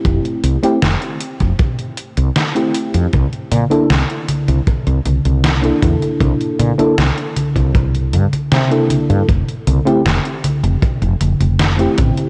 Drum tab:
HH |xxxxxxxxxxxxxxxx|xxxxxxxxxxxxxxxx|xxxxxxxxxxxxxxxx|xxxxxxxxxxxxxxxx|
SD |----o-------o---|----o-------o---|----o-------o---|----o-------o---|
CG |----------------|o-oo--ooo-ooo-oo|o-ooo-ooo-ooo-oo|o-ooo-ooo-ooo-oo|
BD |o------oo-------|o-------o-----o-|o------oo-------|o-------o-----o-|